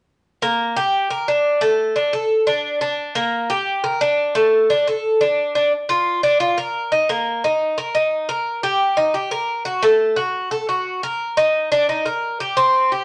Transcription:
0, 0, Header, 1, 2, 480
1, 0, Start_track
1, 0, Tempo, 342466
1, 345, Time_signature, 4, 2, 24, 8
1, 18282, End_track
2, 0, Start_track
2, 0, Title_t, "Cuban tres"
2, 0, Program_c, 0, 25
2, 592, Note_on_c, 0, 58, 73
2, 1054, Note_off_c, 0, 58, 0
2, 1072, Note_on_c, 0, 67, 70
2, 1534, Note_off_c, 0, 67, 0
2, 1548, Note_on_c, 0, 70, 61
2, 1779, Note_off_c, 0, 70, 0
2, 1795, Note_on_c, 0, 62, 61
2, 2256, Note_off_c, 0, 62, 0
2, 2259, Note_on_c, 0, 57, 73
2, 2727, Note_off_c, 0, 57, 0
2, 2744, Note_on_c, 0, 62, 58
2, 2977, Note_off_c, 0, 62, 0
2, 2987, Note_on_c, 0, 69, 66
2, 3451, Note_off_c, 0, 69, 0
2, 3459, Note_on_c, 0, 62, 64
2, 3923, Note_off_c, 0, 62, 0
2, 3940, Note_on_c, 0, 62, 67
2, 4407, Note_off_c, 0, 62, 0
2, 4419, Note_on_c, 0, 58, 73
2, 4886, Note_off_c, 0, 58, 0
2, 4903, Note_on_c, 0, 67, 73
2, 5367, Note_off_c, 0, 67, 0
2, 5378, Note_on_c, 0, 70, 65
2, 5612, Note_off_c, 0, 70, 0
2, 5619, Note_on_c, 0, 62, 69
2, 6085, Note_off_c, 0, 62, 0
2, 6097, Note_on_c, 0, 57, 79
2, 6564, Note_off_c, 0, 57, 0
2, 6587, Note_on_c, 0, 62, 62
2, 6815, Note_off_c, 0, 62, 0
2, 6832, Note_on_c, 0, 69, 61
2, 7291, Note_off_c, 0, 69, 0
2, 7300, Note_on_c, 0, 62, 61
2, 7764, Note_off_c, 0, 62, 0
2, 7782, Note_on_c, 0, 62, 63
2, 8012, Note_off_c, 0, 62, 0
2, 8257, Note_on_c, 0, 65, 69
2, 8722, Note_off_c, 0, 65, 0
2, 8735, Note_on_c, 0, 62, 68
2, 8966, Note_off_c, 0, 62, 0
2, 8971, Note_on_c, 0, 65, 65
2, 9206, Note_off_c, 0, 65, 0
2, 9217, Note_on_c, 0, 70, 67
2, 9681, Note_off_c, 0, 70, 0
2, 9696, Note_on_c, 0, 63, 60
2, 9928, Note_off_c, 0, 63, 0
2, 9943, Note_on_c, 0, 58, 77
2, 10404, Note_off_c, 0, 58, 0
2, 10431, Note_on_c, 0, 63, 63
2, 10888, Note_off_c, 0, 63, 0
2, 10900, Note_on_c, 0, 70, 65
2, 11130, Note_off_c, 0, 70, 0
2, 11137, Note_on_c, 0, 63, 66
2, 11601, Note_off_c, 0, 63, 0
2, 11617, Note_on_c, 0, 70, 66
2, 12081, Note_off_c, 0, 70, 0
2, 12099, Note_on_c, 0, 67, 72
2, 12562, Note_off_c, 0, 67, 0
2, 12571, Note_on_c, 0, 63, 69
2, 12805, Note_off_c, 0, 63, 0
2, 12813, Note_on_c, 0, 67, 59
2, 13046, Note_off_c, 0, 67, 0
2, 13052, Note_on_c, 0, 70, 70
2, 13519, Note_off_c, 0, 70, 0
2, 13528, Note_on_c, 0, 66, 69
2, 13764, Note_off_c, 0, 66, 0
2, 13772, Note_on_c, 0, 57, 86
2, 14239, Note_off_c, 0, 57, 0
2, 14246, Note_on_c, 0, 66, 66
2, 14716, Note_off_c, 0, 66, 0
2, 14734, Note_on_c, 0, 69, 63
2, 14968, Note_off_c, 0, 69, 0
2, 14978, Note_on_c, 0, 66, 58
2, 15443, Note_off_c, 0, 66, 0
2, 15463, Note_on_c, 0, 70, 68
2, 15926, Note_off_c, 0, 70, 0
2, 15939, Note_on_c, 0, 63, 76
2, 16404, Note_off_c, 0, 63, 0
2, 16422, Note_on_c, 0, 62, 76
2, 16653, Note_off_c, 0, 62, 0
2, 16666, Note_on_c, 0, 63, 57
2, 16896, Note_off_c, 0, 63, 0
2, 16897, Note_on_c, 0, 70, 57
2, 17364, Note_off_c, 0, 70, 0
2, 17384, Note_on_c, 0, 67, 65
2, 17614, Note_on_c, 0, 60, 75
2, 17615, Note_off_c, 0, 67, 0
2, 18083, Note_off_c, 0, 60, 0
2, 18107, Note_on_c, 0, 67, 54
2, 18282, Note_off_c, 0, 67, 0
2, 18282, End_track
0, 0, End_of_file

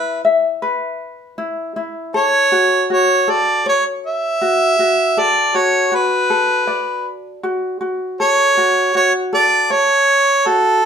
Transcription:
0, 0, Header, 1, 3, 480
1, 0, Start_track
1, 0, Key_signature, 3, "minor"
1, 0, Tempo, 757576
1, 1351, Time_signature, 4, 2, 24, 8
1, 6877, End_track
2, 0, Start_track
2, 0, Title_t, "Harmonica"
2, 0, Program_c, 0, 22
2, 0, Note_on_c, 0, 71, 68
2, 134, Note_off_c, 0, 71, 0
2, 1365, Note_on_c, 0, 73, 90
2, 1813, Note_off_c, 0, 73, 0
2, 1848, Note_on_c, 0, 73, 87
2, 2091, Note_on_c, 0, 74, 87
2, 2101, Note_off_c, 0, 73, 0
2, 2322, Note_off_c, 0, 74, 0
2, 2335, Note_on_c, 0, 73, 74
2, 2436, Note_off_c, 0, 73, 0
2, 2576, Note_on_c, 0, 76, 98
2, 3289, Note_on_c, 0, 74, 89
2, 3298, Note_off_c, 0, 76, 0
2, 3526, Note_on_c, 0, 73, 77
2, 3535, Note_off_c, 0, 74, 0
2, 3768, Note_on_c, 0, 71, 70
2, 3778, Note_off_c, 0, 73, 0
2, 4480, Note_off_c, 0, 71, 0
2, 5200, Note_on_c, 0, 73, 97
2, 5650, Note_off_c, 0, 73, 0
2, 5681, Note_on_c, 0, 73, 79
2, 5782, Note_off_c, 0, 73, 0
2, 5919, Note_on_c, 0, 74, 92
2, 6156, Note_on_c, 0, 73, 97
2, 6166, Note_off_c, 0, 74, 0
2, 6634, Note_on_c, 0, 69, 78
2, 6643, Note_off_c, 0, 73, 0
2, 6877, Note_off_c, 0, 69, 0
2, 6877, End_track
3, 0, Start_track
3, 0, Title_t, "Ukulele"
3, 0, Program_c, 1, 24
3, 0, Note_on_c, 1, 64, 54
3, 0, Note_on_c, 1, 71, 73
3, 0, Note_on_c, 1, 76, 61
3, 154, Note_off_c, 1, 76, 0
3, 156, Note_on_c, 1, 76, 57
3, 387, Note_off_c, 1, 71, 0
3, 394, Note_on_c, 1, 71, 61
3, 874, Note_off_c, 1, 64, 0
3, 874, Note_on_c, 1, 64, 59
3, 1114, Note_off_c, 1, 64, 0
3, 1116, Note_on_c, 1, 64, 51
3, 1353, Note_off_c, 1, 71, 0
3, 1357, Note_on_c, 1, 69, 68
3, 1596, Note_on_c, 1, 66, 49
3, 1615, Note_off_c, 1, 64, 0
3, 1615, Note_off_c, 1, 76, 0
3, 1838, Note_off_c, 1, 66, 0
3, 1838, Note_on_c, 1, 66, 50
3, 2076, Note_off_c, 1, 69, 0
3, 2076, Note_on_c, 1, 69, 60
3, 2317, Note_off_c, 1, 69, 0
3, 2319, Note_on_c, 1, 73, 69
3, 2794, Note_off_c, 1, 66, 0
3, 2797, Note_on_c, 1, 66, 64
3, 3034, Note_off_c, 1, 66, 0
3, 3036, Note_on_c, 1, 66, 50
3, 3275, Note_off_c, 1, 73, 0
3, 3277, Note_on_c, 1, 69, 66
3, 3511, Note_off_c, 1, 66, 0
3, 3514, Note_on_c, 1, 66, 53
3, 3750, Note_off_c, 1, 66, 0
3, 3750, Note_on_c, 1, 66, 54
3, 3992, Note_off_c, 1, 69, 0
3, 3992, Note_on_c, 1, 69, 62
3, 4226, Note_off_c, 1, 69, 0
3, 4228, Note_on_c, 1, 74, 62
3, 4708, Note_off_c, 1, 66, 0
3, 4710, Note_on_c, 1, 66, 55
3, 4944, Note_off_c, 1, 66, 0
3, 4946, Note_on_c, 1, 66, 45
3, 5190, Note_off_c, 1, 74, 0
3, 5195, Note_on_c, 1, 69, 59
3, 5432, Note_off_c, 1, 66, 0
3, 5432, Note_on_c, 1, 66, 52
3, 5663, Note_off_c, 1, 66, 0
3, 5671, Note_on_c, 1, 66, 55
3, 5902, Note_off_c, 1, 69, 0
3, 5910, Note_on_c, 1, 69, 62
3, 6148, Note_on_c, 1, 73, 68
3, 6621, Note_off_c, 1, 66, 0
3, 6628, Note_on_c, 1, 66, 62
3, 6865, Note_off_c, 1, 66, 0
3, 6877, Note_off_c, 1, 69, 0
3, 6877, Note_off_c, 1, 73, 0
3, 6877, End_track
0, 0, End_of_file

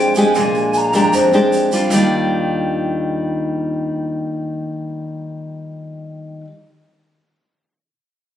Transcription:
0, 0, Header, 1, 5, 480
1, 0, Start_track
1, 0, Key_signature, -3, "major"
1, 0, Tempo, 390625
1, 429, Time_signature, 4, 2, 24, 8
1, 10280, End_track
2, 0, Start_track
2, 0, Title_t, "Flute"
2, 0, Program_c, 0, 73
2, 0, Note_on_c, 0, 79, 76
2, 201, Note_off_c, 0, 79, 0
2, 209, Note_on_c, 0, 80, 65
2, 954, Note_on_c, 0, 82, 64
2, 972, Note_off_c, 0, 80, 0
2, 1411, Note_off_c, 0, 82, 0
2, 10280, End_track
3, 0, Start_track
3, 0, Title_t, "Nylon-string guitar"
3, 0, Program_c, 1, 24
3, 0, Note_on_c, 1, 41, 52
3, 0, Note_on_c, 1, 56, 53
3, 0, Note_on_c, 1, 62, 58
3, 0, Note_on_c, 1, 67, 58
3, 163, Note_off_c, 1, 56, 0
3, 167, Note_off_c, 1, 62, 0
3, 170, Note_off_c, 1, 67, 0
3, 210, Note_on_c, 1, 56, 58
3, 217, Note_on_c, 1, 62, 49
3, 225, Note_on_c, 1, 67, 64
3, 402, Note_off_c, 1, 56, 0
3, 402, Note_off_c, 1, 62, 0
3, 408, Note_off_c, 1, 67, 0
3, 414, Note_off_c, 1, 41, 0
3, 440, Note_on_c, 1, 56, 47
3, 446, Note_on_c, 1, 46, 45
3, 454, Note_on_c, 1, 62, 45
3, 1116, Note_off_c, 1, 56, 0
3, 1122, Note_off_c, 1, 62, 0
3, 1160, Note_on_c, 1, 56, 57
3, 1166, Note_on_c, 1, 62, 57
3, 1174, Note_on_c, 1, 67, 49
3, 1372, Note_off_c, 1, 46, 0
3, 1403, Note_on_c, 1, 41, 48
3, 1596, Note_off_c, 1, 56, 0
3, 1597, Note_off_c, 1, 62, 0
3, 1602, Note_off_c, 1, 67, 0
3, 1639, Note_on_c, 1, 56, 52
3, 1644, Note_on_c, 1, 62, 52
3, 1646, Note_on_c, 1, 67, 55
3, 2075, Note_off_c, 1, 56, 0
3, 2077, Note_off_c, 1, 62, 0
3, 2079, Note_off_c, 1, 67, 0
3, 2121, Note_on_c, 1, 55, 48
3, 2128, Note_on_c, 1, 62, 51
3, 2135, Note_on_c, 1, 65, 58
3, 2331, Note_off_c, 1, 41, 0
3, 2342, Note_on_c, 1, 51, 52
3, 2354, Note_off_c, 1, 55, 0
3, 2369, Note_on_c, 1, 55, 50
3, 2379, Note_off_c, 1, 62, 0
3, 2394, Note_on_c, 1, 62, 54
3, 2405, Note_off_c, 1, 65, 0
3, 2420, Note_on_c, 1, 65, 54
3, 7922, Note_off_c, 1, 51, 0
3, 7949, Note_off_c, 1, 55, 0
3, 7974, Note_off_c, 1, 62, 0
3, 8001, Note_off_c, 1, 65, 0
3, 10280, End_track
4, 0, Start_track
4, 0, Title_t, "Upright bass"
4, 0, Program_c, 2, 32
4, 0, Note_on_c, 2, 41, 69
4, 382, Note_off_c, 2, 41, 0
4, 435, Note_on_c, 2, 34, 96
4, 1102, Note_off_c, 2, 34, 0
4, 1146, Note_on_c, 2, 41, 79
4, 1370, Note_off_c, 2, 41, 0
4, 1388, Note_on_c, 2, 41, 61
4, 1611, Note_off_c, 2, 41, 0
4, 1621, Note_on_c, 2, 41, 62
4, 2295, Note_off_c, 2, 41, 0
4, 2333, Note_on_c, 2, 39, 91
4, 7865, Note_off_c, 2, 39, 0
4, 10280, End_track
5, 0, Start_track
5, 0, Title_t, "Drums"
5, 186, Note_on_c, 9, 82, 53
5, 309, Note_off_c, 9, 82, 0
5, 427, Note_on_c, 9, 82, 50
5, 550, Note_off_c, 9, 82, 0
5, 672, Note_on_c, 9, 82, 21
5, 795, Note_off_c, 9, 82, 0
5, 905, Note_on_c, 9, 82, 41
5, 1028, Note_off_c, 9, 82, 0
5, 1147, Note_on_c, 9, 82, 49
5, 1270, Note_off_c, 9, 82, 0
5, 1390, Note_on_c, 9, 82, 53
5, 1513, Note_off_c, 9, 82, 0
5, 1633, Note_on_c, 9, 82, 23
5, 1756, Note_off_c, 9, 82, 0
5, 1874, Note_on_c, 9, 82, 46
5, 1997, Note_off_c, 9, 82, 0
5, 2113, Note_on_c, 9, 82, 52
5, 2236, Note_off_c, 9, 82, 0
5, 2345, Note_on_c, 9, 82, 75
5, 2468, Note_off_c, 9, 82, 0
5, 10280, End_track
0, 0, End_of_file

